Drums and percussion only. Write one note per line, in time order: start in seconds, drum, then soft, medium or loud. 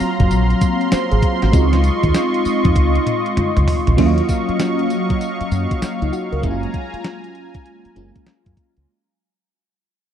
0.00 open hi-hat medium
0.00 tambourine medium
0.20 kick loud
0.20 closed hi-hat medium
0.31 closed hi-hat medium
0.31 tambourine medium
0.50 closed hi-hat medium
0.61 kick medium
0.61 closed hi-hat medium
0.61 tambourine medium
0.81 closed hi-hat medium
0.92 snare loud
0.92 closed hi-hat medium
0.92 tambourine loud
1.12 closed hi-hat medium
1.22 kick medium
1.22 closed hi-hat medium
1.42 snare medium
1.42 closed hi-hat medium
1.53 kick loud
1.53 closed hi-hat medium
1.53 tambourine medium
1.73 snare medium
1.73 closed hi-hat medium
1.84 closed hi-hat medium
1.84 tambourine medium
2.03 kick medium
2.03 closed hi-hat soft
2.14 snare loud
2.14 closed hi-hat medium
2.14 tambourine loud
2.34 closed hi-hat medium
2.45 open hi-hat medium
2.45 tambourine medium
2.65 kick loud
2.65 closed hi-hat medium
2.76 kick loud
2.76 closed hi-hat medium
2.76 high tom medium
2.95 closed hi-hat medium
3.07 closed hi-hat medium
3.07 mid tom medium
3.26 closed hi-hat medium
3.37 closed hi-hat medium
3.37 mid tom loud
3.57 closed hi-hat medium
3.57 mid tom medium
3.68 floor tom loud
3.68 open hi-hat medium
3.87 closed hi-hat soft
3.87 floor tom loud
3.98 kick loud
3.98 closed hi-hat medium
3.98 crash loud
4.18 closed hi-hat medium
4.29 kick medium
4.29 closed hi-hat medium
4.29 tambourine medium
4.49 closed hi-hat soft
4.60 snare loud
4.60 closed hi-hat medium
4.60 tambourine loud
4.79 closed hi-hat medium
4.90 closed hi-hat medium
4.90 tambourine medium
5.10 kick loud
5.10 closed hi-hat medium
5.21 closed hi-hat medium
5.21 tambourine medium
5.41 closed hi-hat medium
5.51 closed hi-hat medium
5.51 tambourine medium
5.71 kick medium
5.71 closed hi-hat medium
5.82 snare loud
5.82 closed hi-hat medium
5.82 tambourine loud
6.02 closed hi-hat medium
6.13 closed hi-hat medium
6.13 tambourine medium
6.32 closed hi-hat soft
6.43 kick loud
6.43 closed hi-hat medium
6.63 closed hi-hat medium
6.74 kick medium
6.74 closed hi-hat medium
6.94 closed hi-hat soft
7.04 snare loud
7.04 closed hi-hat medium
7.24 closed hi-hat soft
7.35 closed hi-hat medium
7.54 kick loud
7.54 closed hi-hat medium
7.66 closed hi-hat medium
7.85 closed hi-hat medium
7.96 closed hi-hat medium
8.15 kick medium
8.15 closed hi-hat medium
8.27 snare loud
8.27 closed hi-hat medium
8.46 kick loud
8.46 closed hi-hat medium
8.57 kick medium
8.57 closed hi-hat medium
8.77 closed hi-hat medium